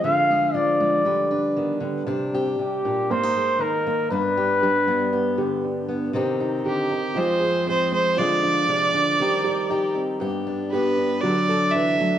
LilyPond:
<<
  \new Staff \with { instrumentName = "Fiddle" } { \time 4/4 \key c \minor \tempo 4 = 118 r1 | r1 | r1 | r4 g'4 c''4 c''8 c''8 |
d''2.~ d''8 r8 | r4 b'4 d''4 e''4 | }
  \new Staff \with { instrumentName = "Flugelhorn" } { \time 4/4 \key c \minor f''4 d''2~ d''8 r8 | r4 g'4 c''4 bes'4 | b'2. r4 | r1 |
r1 | r1 | }
  \new Staff \with { instrumentName = "Felt piano" } { \time 4/4 \key c \minor f8 aes8 d'8 aes8 g8 d'8 b8 g8 | g8 c'16 d'8. d'8 bes8 aes'8 ees'8 bes8 | b8 d'8 g'8 d'8 b8 g'8 d'8 b8 | c'8 ees'8 g'8 ees'8 f8 aes'8 c'8 aes8 |
f8 d'8 aes'8 d'8 g8 g'8 ees'8 c'8 | b8 d'8 g'8 d'8 fis8 a'8 d'8 a8 | }
  \new Staff \with { instrumentName = "Steel-string acoustic guitar" } { \time 4/4 \key c \minor << { <aes f'>8 aes'8 f'8 aes8 b'8 b'4. | d'8 g'4. c'16 ees'16 bes'8 ees'8 bes8 | d'8 g'8 d'8 b8 g'4. b8 | <ees c' ees' g'>8 ees'4. <f aes c' aes'>8 c'8 <aes c' aes'>4 |
<f aes f' aes'>8 f'4. <c' ees' g'>8 g'8 <ees' g'>4 | g'8 d'8 <b d' g'>4 <fis d' a'>8 a'4. | } \\ { d4 f4 d4 ees8 d8 | c4 c8 bes,8 aes,4 ees4 | g,4 g4. d4. | c4 d8 ees8 f,2 |
d4 c8 d8 ees2 | g,2 d4 e8 fis8 | } >> }
>>